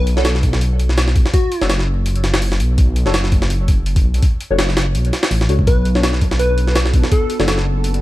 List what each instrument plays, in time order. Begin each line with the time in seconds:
Already playing: detuned saw bass B1, digital synth lead B4
0.07 open hi-hat
0.17 synth stab D4 F#4 A4 C#5, digital synth lead A4, snare
0.25 snare, open hi-hat
0.35 snare
0.43 kick, open hi-hat
0.53 snare
0.61 open hi-hat
0.79 open hi-hat
0.89 snare
0.98 snare, open hi-hat
1.08 snare
1.16 kick, open hi-hat
1.26 snare
1.34 digital synth lead F#4, kick, open hi-hat
1.52 open hi-hat
1.61 detuned saw bass F#1, synth stab D4 F#4 A4 C#5, snare
1.70 snare, open hi-hat
1.79 snare
2.06 open hi-hat
2.16 closed hi-hat
2.24 snare, open hi-hat
2.34 snare
2.42 open hi-hat
2.52 snare
2.60 detuned saw bass B1, open hi-hat
2.78 kick, open hi-hat
2.96 open hi-hat
3.06 detuned saw bass F#1, synth stab D4 F#4 A4 C#5, snare
3.14 snare, open hi-hat
3.24 snare
3.32 kick, open hi-hat
3.42 snare
3.50 open hi-hat
3.68 kick, open hi-hat
3.86 open hi-hat
3.96 kick, open hi-hat
4.04 detuned saw bass B1
4.14 open hi-hat
4.22 kick, open hi-hat
4.40 open hi-hat
4.50 detuned saw bass F#1, synth stab D4 F#4 A4 C#5
4.59 snare, open hi-hat
4.69 snare
4.77 snare, open hi-hat
4.95 detuned saw bass B1, open hi-hat
5.05 closed hi-hat
5.13 snare, open hi-hat
5.23 snare
5.31 detuned saw bass A1, open hi-hat
5.41 snare
5.49 detuned saw bass C#2, synth stab D4 F#4 A4 C#5, open hi-hat
5.59 kick
5.67 detuned saw bass B1, ambient pad B3 D4 F#4 A4, digital synth lead B4, kick, open hi-hat
5.85 open hi-hat
5.95 synth stab D4 F#4 A4 C#5, snare
6.03 snare, open hi-hat
6.13 snare
6.21 kick, open hi-hat
6.31 snare
6.39 digital synth lead B4, open hi-hat
6.58 open hi-hat
6.67 snare
6.76 snare, open hi-hat
6.86 snare
6.94 kick, open hi-hat
7.04 snare
7.12 digital synth lead A4, kick, open hi-hat
7.30 open hi-hat
7.40 detuned saw bass F#1, synth stab D4 F#4 A4 C#5, snare
7.48 snare, open hi-hat
7.58 snare
7.84 open hi-hat
7.94 closed hi-hat